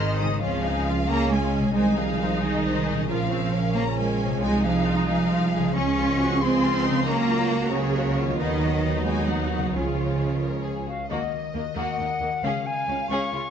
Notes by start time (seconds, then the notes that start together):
Already playing: G#1 G#2 D#3 F#3 G#3 C4 D#4 F#4 G#4 C5 D#5 F#5 G#5 C6 D#6 F6
0.07 D#5
0.18 D#3 G#3 C4 D#4 G#4 D#6
0.24 C#3
0.29 G#3 C4
0.33 G#4
0.37 C#5
0.42 C#2 C#3 F3 G#3 C#4 F4 F5
0.64 D#4 G#4
0.87 F4
1.09 A#3 C#4 G#4 A#5
1.32 G#3 F4 G#5
1.56 C3 G#4
1.63 G#3
1.67 G#4 D#5
1.75 C2 D#3 G#3 D#4 C5 G#5
1.98 F3 G#4 F5
2.21 C5
2.41 D#3 G#3 G#4 D#5
2.66 C5
2.87 A#2 G#4
2.95 C#4
2.99 F4
3.04 A#4
3.08 A#1 C#3 F3 F4 A#4 F5
3.31 C4 C#5
3.53 C#4 A#4
3.74 C#3 F3 A#3 C#5 A#5
3.97 G#3 A#4 G#5
4.19 C#5
4.24 C3
4.29 C4
4.33 F4
4.38 G#3 D#4 F4 G#4
4.42 C2 F3 G#3 G#5
4.63 F3 G#4 F5
4.86 F4
5.07 F3 G#3 G#4 F5
5.29 F4
5.54 G#4
5.58 C#3
5.62 G#3
5.67 F4
5.71 C#4 G#4 C#6
5.76 C#2 F3 G#3 G#4
5.98 F4
6.20 F#4 G#4
6.42 C4 F4 G#4 C6
6.64 F4 G#4
6.85 D#4 F4
6.90 C#3
6.94 F#3
6.98 F#4
7.04 A#3 C#4 A#4 A#5
7.08 F#3 A#3 A#4
7.29 F4 F#4
7.51 F#4 A#4
7.71 C#3 F#3 A#3 F#4 G#4 C#5
7.93 F#4 A#4
8.16 F4 F#4
8.22 D#3
8.26 F#3
8.31 F#4
8.35 D#4 B4
8.39 D#2 D#3 F#3 B3 D#4 D#5
8.61 B3 F#4
8.83 D#4
9.06 G#3 F#4 G#5
9.28 F#3 D#4 F#5
9.51 F#4
9.56 C#3
9.61 G#3
9.66 F4
9.70 C#2 F3 G#3 F4 G#4 C#5
9.75 C#3 C#5
9.96 F4
10.18 G#4
10.41 A#4
10.63 G#4
10.88 F#4 F5
11.10 D#2 D#3 A#3 F#4 D#5
11.33 F#3
11.54 D#2 A#3 F#4
11.75 D#2 A#3 F#4 A#4 F#5
11.97 D#2 A#3 D#4 F#4
12.21 D#2 F#3 A#3
12.43 C#2 C#3 C#4 G#4 F5
12.66 G#3 G#5
12.88 C#2 C#4 F4
13.10 C#2 C#4 G#4 C#5 C#6
13.33 C#2 C#4 F4 G#4